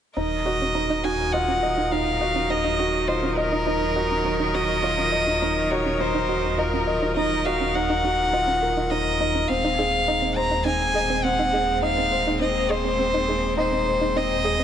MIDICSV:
0, 0, Header, 1, 6, 480
1, 0, Start_track
1, 0, Tempo, 582524
1, 147, Time_signature, 4, 2, 24, 8
1, 12062, End_track
2, 0, Start_track
2, 0, Title_t, "Violin"
2, 0, Program_c, 0, 40
2, 145, Note_on_c, 0, 75, 71
2, 859, Note_on_c, 0, 80, 76
2, 871, Note_off_c, 0, 75, 0
2, 1092, Note_on_c, 0, 78, 77
2, 1104, Note_off_c, 0, 80, 0
2, 1579, Note_on_c, 0, 77, 73
2, 1591, Note_off_c, 0, 78, 0
2, 2060, Note_on_c, 0, 75, 74
2, 2072, Note_off_c, 0, 77, 0
2, 2535, Note_on_c, 0, 72, 68
2, 2547, Note_off_c, 0, 75, 0
2, 2780, Note_on_c, 0, 70, 82
2, 2792, Note_off_c, 0, 72, 0
2, 3748, Note_on_c, 0, 75, 87
2, 3760, Note_off_c, 0, 70, 0
2, 4703, Note_on_c, 0, 73, 77
2, 4715, Note_off_c, 0, 75, 0
2, 4946, Note_on_c, 0, 72, 80
2, 4959, Note_off_c, 0, 73, 0
2, 5428, Note_on_c, 0, 70, 76
2, 5440, Note_off_c, 0, 72, 0
2, 5903, Note_off_c, 0, 70, 0
2, 5908, Note_on_c, 0, 75, 82
2, 6144, Note_on_c, 0, 77, 79
2, 6156, Note_off_c, 0, 75, 0
2, 6386, Note_on_c, 0, 78, 87
2, 6399, Note_off_c, 0, 77, 0
2, 7338, Note_on_c, 0, 75, 82
2, 7351, Note_off_c, 0, 78, 0
2, 7817, Note_on_c, 0, 77, 86
2, 7830, Note_off_c, 0, 75, 0
2, 8541, Note_on_c, 0, 82, 89
2, 8553, Note_off_c, 0, 77, 0
2, 8781, Note_off_c, 0, 82, 0
2, 8786, Note_on_c, 0, 80, 91
2, 9262, Note_on_c, 0, 78, 85
2, 9274, Note_off_c, 0, 80, 0
2, 9744, Note_off_c, 0, 78, 0
2, 9752, Note_on_c, 0, 77, 89
2, 10196, Note_off_c, 0, 77, 0
2, 10231, Note_on_c, 0, 75, 80
2, 10472, Note_on_c, 0, 72, 86
2, 10484, Note_off_c, 0, 75, 0
2, 11186, Note_off_c, 0, 72, 0
2, 11191, Note_on_c, 0, 72, 78
2, 11674, Note_on_c, 0, 75, 89
2, 11686, Note_off_c, 0, 72, 0
2, 12062, Note_off_c, 0, 75, 0
2, 12062, End_track
3, 0, Start_track
3, 0, Title_t, "Felt piano"
3, 0, Program_c, 1, 0
3, 137, Note_on_c, 1, 63, 57
3, 279, Control_c, 1, 64, 127
3, 370, Note_off_c, 1, 63, 0
3, 375, Note_on_c, 1, 66, 57
3, 518, Note_off_c, 1, 66, 0
3, 617, Note_on_c, 1, 63, 55
3, 850, Note_off_c, 1, 63, 0
3, 859, Note_on_c, 1, 66, 59
3, 1091, Note_off_c, 1, 66, 0
3, 1101, Note_on_c, 1, 65, 65
3, 1241, Note_off_c, 1, 65, 0
3, 1342, Note_on_c, 1, 75, 58
3, 1573, Note_off_c, 1, 75, 0
3, 1583, Note_on_c, 1, 63, 60
3, 1813, Note_off_c, 1, 63, 0
3, 1820, Note_on_c, 1, 66, 52
3, 1960, Note_off_c, 1, 66, 0
3, 2063, Note_on_c, 1, 63, 61
3, 2293, Note_off_c, 1, 63, 0
3, 2300, Note_on_c, 1, 66, 57
3, 2531, Note_off_c, 1, 66, 0
3, 2542, Note_on_c, 1, 65, 52
3, 2681, Note_off_c, 1, 65, 0
3, 2781, Note_on_c, 1, 75, 56
3, 3012, Note_off_c, 1, 75, 0
3, 3024, Note_on_c, 1, 63, 64
3, 3253, Note_off_c, 1, 63, 0
3, 3262, Note_on_c, 1, 66, 61
3, 3401, Note_off_c, 1, 66, 0
3, 3500, Note_on_c, 1, 63, 58
3, 3731, Note_off_c, 1, 63, 0
3, 3747, Note_on_c, 1, 66, 55
3, 3975, Note_off_c, 1, 66, 0
3, 3980, Note_on_c, 1, 65, 64
3, 4120, Note_off_c, 1, 65, 0
3, 4221, Note_on_c, 1, 75, 60
3, 4452, Note_off_c, 1, 75, 0
3, 4466, Note_on_c, 1, 63, 62
3, 4694, Note_off_c, 1, 63, 0
3, 4706, Note_on_c, 1, 66, 60
3, 4843, Note_off_c, 1, 66, 0
3, 4948, Note_on_c, 1, 63, 67
3, 5175, Note_off_c, 1, 63, 0
3, 5181, Note_on_c, 1, 66, 59
3, 5412, Note_off_c, 1, 66, 0
3, 5421, Note_on_c, 1, 65, 58
3, 5561, Note_off_c, 1, 65, 0
3, 5663, Note_on_c, 1, 75, 54
3, 5893, Note_off_c, 1, 75, 0
3, 5910, Note_on_c, 1, 63, 64
3, 6136, Note_off_c, 1, 63, 0
3, 6148, Note_on_c, 1, 66, 64
3, 6284, Note_off_c, 1, 66, 0
3, 6390, Note_on_c, 1, 63, 59
3, 6616, Note_off_c, 1, 63, 0
3, 6629, Note_on_c, 1, 66, 54
3, 6856, Note_off_c, 1, 66, 0
3, 6866, Note_on_c, 1, 65, 63
3, 7003, Note_off_c, 1, 65, 0
3, 7106, Note_on_c, 1, 70, 55
3, 7334, Note_off_c, 1, 70, 0
3, 7345, Note_on_c, 1, 63, 60
3, 7483, Note_off_c, 1, 63, 0
3, 7584, Note_on_c, 1, 63, 56
3, 7813, Note_off_c, 1, 63, 0
3, 7823, Note_on_c, 1, 60, 65
3, 7838, Control_c, 1, 64, 0
3, 7995, Control_c, 1, 64, 127
3, 8053, Note_off_c, 1, 60, 0
3, 8065, Note_on_c, 1, 68, 64
3, 8294, Note_off_c, 1, 68, 0
3, 8304, Note_on_c, 1, 63, 58
3, 8442, Note_off_c, 1, 63, 0
3, 8542, Note_on_c, 1, 72, 62
3, 8773, Note_off_c, 1, 72, 0
3, 8777, Note_on_c, 1, 60, 66
3, 9010, Note_off_c, 1, 60, 0
3, 9017, Note_on_c, 1, 68, 57
3, 9159, Note_off_c, 1, 68, 0
3, 9260, Note_on_c, 1, 60, 62
3, 9491, Note_off_c, 1, 60, 0
3, 9501, Note_on_c, 1, 68, 57
3, 9732, Note_off_c, 1, 68, 0
3, 9742, Note_on_c, 1, 63, 62
3, 9881, Note_off_c, 1, 63, 0
3, 9983, Note_on_c, 1, 72, 65
3, 10213, Note_off_c, 1, 72, 0
3, 10220, Note_on_c, 1, 60, 59
3, 10451, Note_off_c, 1, 60, 0
3, 10462, Note_on_c, 1, 68, 59
3, 10601, Note_off_c, 1, 68, 0
3, 10700, Note_on_c, 1, 60, 67
3, 10931, Note_off_c, 1, 60, 0
3, 10944, Note_on_c, 1, 68, 61
3, 11173, Note_off_c, 1, 68, 0
3, 11185, Note_on_c, 1, 63, 64
3, 11322, Note_off_c, 1, 63, 0
3, 11427, Note_on_c, 1, 72, 60
3, 11655, Note_off_c, 1, 72, 0
3, 11667, Note_on_c, 1, 60, 66
3, 11895, Note_off_c, 1, 60, 0
3, 11904, Note_on_c, 1, 68, 63
3, 12042, Note_off_c, 1, 68, 0
3, 12062, End_track
4, 0, Start_track
4, 0, Title_t, "Synth arpeggio sound"
4, 0, Program_c, 2, 84
4, 141, Note_on_c, 2, 63, 76
4, 177, Note_off_c, 2, 63, 0
4, 383, Note_on_c, 2, 75, 60
4, 417, Note_off_c, 2, 75, 0
4, 510, Note_on_c, 2, 61, 68
4, 590, Note_off_c, 2, 61, 0
4, 743, Note_on_c, 2, 63, 88
4, 826, Note_off_c, 2, 63, 0
4, 861, Note_on_c, 2, 63, 64
4, 897, Note_off_c, 2, 63, 0
4, 1100, Note_on_c, 2, 75, 76
4, 1136, Note_off_c, 2, 75, 0
4, 1222, Note_on_c, 2, 61, 69
4, 1306, Note_off_c, 2, 61, 0
4, 1464, Note_on_c, 2, 63, 88
4, 1547, Note_off_c, 2, 63, 0
4, 1585, Note_on_c, 2, 63, 75
4, 1619, Note_off_c, 2, 63, 0
4, 1824, Note_on_c, 2, 75, 64
4, 1858, Note_off_c, 2, 75, 0
4, 1942, Note_on_c, 2, 61, 66
4, 2026, Note_off_c, 2, 61, 0
4, 2180, Note_on_c, 2, 63, 80
4, 2265, Note_off_c, 2, 63, 0
4, 2306, Note_on_c, 2, 63, 61
4, 2339, Note_off_c, 2, 63, 0
4, 2543, Note_on_c, 2, 75, 70
4, 2578, Note_off_c, 2, 75, 0
4, 2663, Note_on_c, 2, 61, 69
4, 2747, Note_off_c, 2, 61, 0
4, 2904, Note_on_c, 2, 63, 90
4, 2987, Note_off_c, 2, 63, 0
4, 3026, Note_on_c, 2, 63, 70
4, 3059, Note_off_c, 2, 63, 0
4, 3264, Note_on_c, 2, 75, 65
4, 3298, Note_off_c, 2, 75, 0
4, 3390, Note_on_c, 2, 61, 65
4, 3470, Note_off_c, 2, 61, 0
4, 3624, Note_on_c, 2, 63, 90
4, 3707, Note_off_c, 2, 63, 0
4, 3748, Note_on_c, 2, 63, 67
4, 3780, Note_off_c, 2, 63, 0
4, 3986, Note_on_c, 2, 75, 74
4, 4019, Note_off_c, 2, 75, 0
4, 4105, Note_on_c, 2, 61, 65
4, 4188, Note_off_c, 2, 61, 0
4, 4345, Note_on_c, 2, 63, 89
4, 4428, Note_off_c, 2, 63, 0
4, 4470, Note_on_c, 2, 63, 73
4, 4501, Note_off_c, 2, 63, 0
4, 4711, Note_on_c, 2, 75, 69
4, 4741, Note_off_c, 2, 75, 0
4, 4828, Note_on_c, 2, 61, 63
4, 4909, Note_off_c, 2, 61, 0
4, 5065, Note_on_c, 2, 63, 94
4, 5148, Note_off_c, 2, 63, 0
4, 5185, Note_on_c, 2, 63, 66
4, 5218, Note_off_c, 2, 63, 0
4, 5428, Note_on_c, 2, 75, 78
4, 5460, Note_off_c, 2, 75, 0
4, 5551, Note_on_c, 2, 61, 67
4, 5630, Note_off_c, 2, 61, 0
4, 5787, Note_on_c, 2, 63, 82
4, 5869, Note_off_c, 2, 63, 0
4, 5906, Note_on_c, 2, 63, 74
4, 5939, Note_off_c, 2, 63, 0
4, 6148, Note_on_c, 2, 75, 65
4, 6180, Note_off_c, 2, 75, 0
4, 6269, Note_on_c, 2, 61, 65
4, 6349, Note_off_c, 2, 61, 0
4, 6509, Note_on_c, 2, 63, 98
4, 6590, Note_off_c, 2, 63, 0
4, 6630, Note_on_c, 2, 63, 73
4, 6661, Note_off_c, 2, 63, 0
4, 6868, Note_on_c, 2, 75, 72
4, 6900, Note_off_c, 2, 75, 0
4, 6984, Note_on_c, 2, 61, 70
4, 7067, Note_off_c, 2, 61, 0
4, 7227, Note_on_c, 2, 63, 86
4, 7309, Note_off_c, 2, 63, 0
4, 7346, Note_on_c, 2, 63, 71
4, 7379, Note_off_c, 2, 63, 0
4, 7589, Note_on_c, 2, 75, 62
4, 7621, Note_off_c, 2, 75, 0
4, 7706, Note_on_c, 2, 61, 65
4, 7788, Note_off_c, 2, 61, 0
4, 7947, Note_on_c, 2, 63, 89
4, 8028, Note_off_c, 2, 63, 0
4, 8066, Note_on_c, 2, 63, 64
4, 8099, Note_off_c, 2, 63, 0
4, 8308, Note_on_c, 2, 75, 72
4, 8340, Note_off_c, 2, 75, 0
4, 8422, Note_on_c, 2, 60, 70
4, 8506, Note_off_c, 2, 60, 0
4, 8661, Note_on_c, 2, 63, 89
4, 8746, Note_off_c, 2, 63, 0
4, 8779, Note_on_c, 2, 63, 74
4, 8816, Note_off_c, 2, 63, 0
4, 9026, Note_on_c, 2, 75, 69
4, 9059, Note_off_c, 2, 75, 0
4, 9147, Note_on_c, 2, 60, 75
4, 9229, Note_off_c, 2, 60, 0
4, 9387, Note_on_c, 2, 63, 90
4, 9469, Note_off_c, 2, 63, 0
4, 9509, Note_on_c, 2, 63, 64
4, 9540, Note_off_c, 2, 63, 0
4, 9748, Note_on_c, 2, 75, 81
4, 9780, Note_off_c, 2, 75, 0
4, 9872, Note_on_c, 2, 60, 63
4, 9951, Note_off_c, 2, 60, 0
4, 10112, Note_on_c, 2, 63, 89
4, 10191, Note_off_c, 2, 63, 0
4, 10233, Note_on_c, 2, 63, 73
4, 10262, Note_off_c, 2, 63, 0
4, 10470, Note_on_c, 2, 75, 73
4, 10501, Note_off_c, 2, 75, 0
4, 10586, Note_on_c, 2, 60, 71
4, 10668, Note_off_c, 2, 60, 0
4, 10829, Note_on_c, 2, 63, 92
4, 10909, Note_off_c, 2, 63, 0
4, 10954, Note_on_c, 2, 63, 67
4, 10983, Note_off_c, 2, 63, 0
4, 11192, Note_on_c, 2, 75, 76
4, 11222, Note_off_c, 2, 75, 0
4, 11309, Note_on_c, 2, 60, 68
4, 11390, Note_off_c, 2, 60, 0
4, 11547, Note_on_c, 2, 63, 81
4, 11628, Note_off_c, 2, 63, 0
4, 11671, Note_on_c, 2, 63, 74
4, 11701, Note_off_c, 2, 63, 0
4, 11910, Note_on_c, 2, 75, 66
4, 11941, Note_off_c, 2, 75, 0
4, 12025, Note_on_c, 2, 60, 70
4, 12062, Note_off_c, 2, 60, 0
4, 12062, End_track
5, 0, Start_track
5, 0, Title_t, "String quartet"
5, 0, Program_c, 3, 48
5, 148, Note_on_c, 3, 63, 60
5, 150, Note_on_c, 3, 51, 66
5, 152, Note_on_c, 3, 70, 72
5, 154, Note_on_c, 3, 54, 61
5, 155, Note_on_c, 3, 75, 59
5, 7795, Note_off_c, 3, 51, 0
5, 7795, Note_off_c, 3, 63, 0
5, 7797, Note_off_c, 3, 54, 0
5, 7797, Note_off_c, 3, 70, 0
5, 7798, Note_off_c, 3, 75, 0
5, 7824, Note_on_c, 3, 60, 74
5, 7826, Note_on_c, 3, 56, 67
5, 7826, Note_on_c, 3, 58, 62
5, 12062, Note_off_c, 3, 56, 0
5, 12062, Note_off_c, 3, 58, 0
5, 12062, Note_off_c, 3, 60, 0
5, 12062, End_track
6, 0, Start_track
6, 0, Title_t, "Detuned saw bass"
6, 0, Program_c, 4, 39
6, 140, Note_on_c, 4, 27, 78
6, 7799, Note_off_c, 4, 27, 0
6, 7827, Note_on_c, 4, 27, 77
6, 12062, Note_off_c, 4, 27, 0
6, 12062, End_track
0, 0, End_of_file